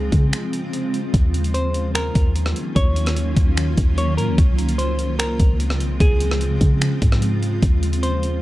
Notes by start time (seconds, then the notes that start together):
Already playing: C#2 C#3 F3 G#3 C4 F4 G#4
0.12 C#3, kick, closed hi-hat
0.33 finger snap, closed hi-hat
0.53 closed hi-hat
0.73 closed hi-hat
0.94 closed hi-hat
1.14 D#2 D#3 F#3 A#3 C#4 F4, kick, closed hi-hat
1.34 closed hi-hat
1.44 closed hi-hat
1.54 C5, closed hi-hat
1.74 closed hi-hat
1.95 A#4, finger snap, closed hi-hat
2.15 D#2, kick, closed hi-hat
2.36 closed hi-hat
2.46 cross-stick
2.56 closed hi-hat
2.76 D#2 C#5, kick, closed hi-hat
2.96 closed hi-hat
3.06 cross-stick, closed hi-hat
3.17 closed hi-hat
3.36 D#2, kick, closed hi-hat
3.57 finger snap, closed hi-hat
3.77 D#2, kick, closed hi-hat
3.98 C#5, closed hi-hat
4.17 A#2 A#4, closed hi-hat
4.28 D#2
4.38 C#2 C#3 F3 G#3 C4, kick, closed hi-hat
4.59 closed hi-hat
4.69 closed hi-hat
4.78 C5, closed hi-hat
4.99 closed hi-hat
5.19 C2 A#4, finger snap, closed hi-hat
5.29 C#2
5.40 C#2, kick, closed hi-hat
5.60 closed hi-hat
5.70 cross-stick
5.80 C2, closed hi-hat
6.00 C#2 G#4, kick, closed hi-hat
6.20 closed hi-hat
6.31 cross-stick
6.41 closed hi-hat
6.61 C#3, kick, closed hi-hat
6.81 finger snap, closed hi-hat
7.02 G#2, kick, closed hi-hat
7.12 cross-stick
7.22 closed hi-hat
7.43 closed hi-hat
7.62 D#2 D#3 F#3 A#3 C#4, kick, closed hi-hat
7.83 closed hi-hat
7.93 closed hi-hat
8.03 C5, closed hi-hat
8.23 closed hi-hat